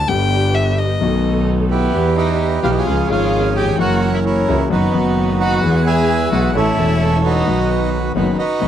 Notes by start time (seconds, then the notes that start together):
0.07 G1 G2 D3 G3 B3 D4 G4 G5
0.11 G4
0.55 E5
0.79 D#5
0.99 B1 B2 D#3 A3 B3 D#4 A4
1.03 F#4
1.70 B3 E4 G4 B4
1.91 E2 E3 G3 B3 G4
1.95 G4
2.16 D#4 G4 B4 D#5
2.63 B1 B2 E3 G3 B3 E4 F4 G4 F5
2.69 D#4 D#5
2.77 F4 G#4 C#5 F5
2.86 C#2 C#3 F3 G#3 C#4 F4 G#4
3.08 G#1 G#2 F3 G#3 C#4 F4 G#4 C#5 F5
3.12 G#4
3.56 G4 G5
3.62 D#2
3.68 E2
3.74 F2 E3
3.79 F#1 F#2 F#3 A#3 C#4 E4 F#4 A#4 C#5 F#5
4.14 E4 E5
4.26 C#4 E4 A#4 C#5
4.48 C#2 C#3 E3 A#3 C#4 E4 F#4
4.70 F#1 F#2 D#3 F#3 B3 D#4 F#4 B4
4.91 F#1 F#2 D#3 F#3 B3 D#4 F#4
4.95 F#4
5.41 F#4 B4 F#5
5.61 E2 E3 G#3 B3 E4 G#4
5.65 G#4
5.86 G#4 B4 E5 G#5
6.32 B1 B2 E3 G#3 B3 E4 F#4 G#4 F#5
6.54 A1 A2 E3 A3 C#4 E4 A4 C#5 E5
6.75 E1 E2 E3 A3 C#4 E4 A4
6.80 A4
7.25 D#4 F#4 B4 D#5
7.45 B1 B2 D#3 F#3 B3 D#4 F#4
7.50 F#4
8.15 F#1 F#2 D#3 F#3 B3 D#4 F#4 B4
8.37 D#4 F#4 B4 D#5
8.60 B1 B2 D#3 F#3 B3 D#4 F#4